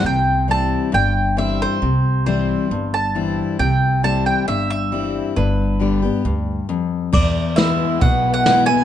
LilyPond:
<<
  \new Staff \with { instrumentName = "Mandolin" } { \time 4/4 \key c \major \tempo 4 = 136 g''4 a''4 g''4 e''8 c''8~ | c''4 c''4. a''4. | g''4 a''8 g''8 e''8 e''4. | b'2. r4 |
\key e \dorian d''4 e''4 fis''8. fis''8. gis''8 | }
  \new Staff \with { instrumentName = "Violin section" } { \time 4/4 \key c \major r1 | r1 | r1 | r1 |
\key e \dorian <gis b e' b'>1 | }
  \new Staff \with { instrumentName = "Steel-string acoustic guitar" } { \clef bass \time 4/4 \key c \major << { r4 <e g c' e'>4 r4 <e g c' e'>4 | r4 <e g c' e'>4 r4 <e g c' e'>4 | r4 <e g c' e'>4 r4 <e g c' e'>4 | r4 <d g b g'>8 <b g'>8 r2 |
\key e \dorian r4 <e gis b e'>4 r4 <e gis b e'>8 <b e'>8 | } \\ { c2 g,2 | c2 g,2 | c2 g,2 | g,2 g,4 f,4 |
e,2 b,2 | } >> }
  \new Staff \with { instrumentName = "Upright bass" } { \clef bass \time 4/4 \key c \major c,2 g,,2 | c,2 g,,2 | c,2 g,,2 | g,,2 d,4 r4 |
\key e \dorian e,2 b,,2 | }
  \new DrumStaff \with { instrumentName = "Drums" } \drummode { \time 4/4 r4 r4 r4 r4 | r4 r4 r4 r4 | r4 r4 r4 r4 | r4 r4 r4 r4 |
<cymc bd>4 sn4 <hho bd>4 sn4 | }
>>